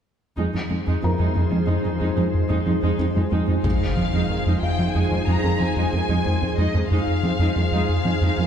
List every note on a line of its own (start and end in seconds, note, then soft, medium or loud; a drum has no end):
0.37 0.47 F2 medium
0.37 0.44 F2 soft
0.37 3.60 F3 medium
0.37 0.53 G#3 soft
0.37 0.53 D#4 soft
0.37 3.60 D#4 medium
0.37 3.60 G#4 medium
0.37 3.61 C5 medium
0.54 0.61 F2 soft
0.54 0.64 F3 soft
0.54 0.61 G#3 soft
0.54 0.61 D#4 soft
0.69 0.77 F2 soft
0.69 0.80 F3 medium
0.69 0.76 G#3 soft
0.69 0.76 D#4 soft
0.86 0.93 F2 soft
0.86 0.97 F2 medium
0.86 1.01 G#3 soft
0.86 1.01 D#4 soft
1.02 1.10 F2 soft
1.02 1.13 F2 soft
1.02 1.09 G#3 soft
1.02 1.09 D#4 soft
1.02 2.95 A#4 soft
1.02 2.95 A#5 soft
1.19 1.25 F2 soft
1.19 1.29 F2 medium
1.19 1.33 G#3 soft
1.19 1.33 D#4 soft
1.34 1.42 F2 soft
1.34 1.46 F2 soft
1.34 1.41 G#3 soft
1.34 1.41 D#4 soft
1.50 1.58 F2 soft
1.50 1.62 F3 soft
1.50 1.57 G#3 soft
1.50 1.57 D#4 soft
1.67 1.74 F2 soft
1.67 1.78 F2 medium
1.67 1.83 G#3 soft
1.67 1.82 D#4 medium
1.83 1.91 F2 soft
1.83 1.95 F3 soft
1.83 1.91 G#3 soft
1.83 1.90 D#4 soft
1.99 2.07 F2 medium
1.99 2.11 F2 medium
1.99 2.14 G#3 soft
1.99 2.14 D#4 soft
2.16 2.24 F2 soft
2.16 2.27 F3 soft
2.16 2.22 G#3 soft
2.16 2.22 D#4 soft
2.34 2.44 F2 soft
2.48 2.57 F2 medium
2.48 2.60 F2 medium
2.48 2.64 G#3 medium
2.48 2.64 D#4 medium
2.65 2.74 F2 soft
2.65 2.76 F3 medium
2.65 2.72 G#3 soft
2.65 2.72 D#4 soft
2.82 2.89 F2 medium
2.82 2.93 F2 medium
2.82 2.97 G#3 medium
2.82 2.97 D#4 medium
2.98 3.06 F2 soft
2.98 3.09 F2 soft
2.98 3.05 G#3 soft
2.98 3.05 D#4 soft
3.15 3.23 F2 soft
3.15 3.26 F3 soft
3.15 3.21 G#3 medium
3.15 3.22 D#4 soft
3.31 3.38 F2 medium
3.31 3.42 F2 medium
3.31 3.46 G#3 medium
3.31 3.47 D#4 medium
3.47 3.58 F2 medium
3.47 3.55 F2 soft
3.47 3.54 G#3 soft
3.47 3.54 D#4 soft
3.64 3.74 F2 medium
3.64 3.71 F2 soft
3.64 6.87 F3 medium
3.64 3.79 G#3 medium
3.64 3.79 D#4 soft
3.64 6.87 D#4 medium
3.64 6.87 G#4 medium
3.64 6.87 C5 medium
3.64 4.58 F5 medium
3.64 taiko medium
3.64 impact soft
3.80 3.90 F2 soft
3.96 4.04 F2 soft
3.96 4.03 F3 soft
3.96 4.07 F3 soft
3.96 4.03 C4 soft
4.13 4.23 F2 medium
4.13 4.20 F2 soft
4.13 4.28 G#3 soft
4.13 4.28 D#4 soft
4.29 4.39 F2 soft
4.29 4.37 F2 soft
4.29 4.36 D#3 soft
4.29 4.36 G#3 soft
4.46 4.56 F2 medium
4.46 4.53 F2 soft
4.46 4.61 G#3 soft
4.46 4.61 D#4 soft
4.62 4.72 F2 soft
4.62 6.54 F5 soft
4.62 4.94 G5 medium
4.79 4.86 F2 soft
4.79 4.85 F3 soft
4.79 4.88 F3 medium
4.79 4.85 C4 soft
4.94 5.02 F2 soft
4.94 5.05 F2 medium
4.94 5.10 G#3 soft
4.94 5.10 D#4 soft
4.94 5.27 G#5 soft
5.11 5.21 F2 soft
5.11 5.18 F2 soft
5.11 5.17 D#3 soft
5.11 5.17 G#3 soft
5.27 5.34 F2 medium
5.27 5.37 F2 medium
5.27 5.42 G#3 soft
5.27 5.42 D#4 soft
5.27 5.60 A#5 medium
5.43 5.50 F2 soft
5.43 5.53 F2 soft
5.43 5.50 D#3 soft
5.43 5.50 G#3 soft
5.60 5.67 F2 soft
5.60 5.70 F3 medium
5.60 5.67 F3 soft
5.60 5.67 C4 soft
5.60 6.58 G#5 medium
5.76 5.86 F2 medium
5.76 5.83 F2 soft
5.76 5.91 G#3 soft
5.76 5.91 D#4 soft
5.92 6.03 F2 soft
5.92 6.00 F2 soft
5.92 5.99 D#3 soft
5.92 5.99 G#3 soft
6.09 6.19 F2 medium
6.09 6.16 F2 soft
6.09 6.24 G#3 soft
6.09 6.24 D#4 soft
6.25 6.32 F2 soft
6.25 6.35 F2 medium
6.25 6.32 D#3 soft
6.25 6.32 G#3 soft
6.42 6.49 F2 soft
6.42 6.52 F2 soft
6.42 6.48 F3 soft
6.42 6.48 C4 soft
6.57 6.68 F2 medium
6.57 6.65 F2 soft
6.57 6.73 G#3 soft
6.57 6.73 D#4 soft
6.57 6.90 D#5 soft
6.74 6.84 F2 medium
6.74 6.81 F2 soft
6.74 6.80 D#3 soft
6.74 6.81 G#3 soft
6.90 6.97 F2 soft
6.90 7.00 F2 medium
6.90 8.47 F3 medium
6.90 7.06 G#3 soft
6.90 7.06 D#4 soft
6.90 8.47 D#4 medium
6.90 8.47 G#4 medium
6.90 8.47 C5 soft
6.90 8.47 F5 medium
7.07 7.17 F2 medium
7.23 7.30 F2 soft
7.23 7.33 F3 soft
7.23 7.30 F3 soft
7.23 7.30 C4 soft
7.39 7.49 F2 medium
7.39 7.46 F2 soft
7.39 7.55 G#3 soft
7.39 7.55 D#4 soft
7.56 7.66 F2 soft
7.56 7.63 F2 soft
7.56 7.63 D#3 soft
7.56 7.63 G#3 soft
7.72 7.82 F2 medium
7.72 7.79 F2 soft
7.72 7.88 G#3 soft
7.72 7.87 D#4 medium
7.89 7.98 F2 soft
8.05 8.12 F2 soft
8.05 8.14 F3 medium
8.05 8.12 F3 soft
8.05 8.12 C4 soft
8.21 8.31 F2 medium
8.21 8.29 F2 soft
8.21 8.37 G#3 soft
8.21 8.37 D#4 soft
8.37 8.47 F2 soft
8.37 8.44 F2 soft
8.37 8.45 D#3 soft
8.37 8.45 G#3 soft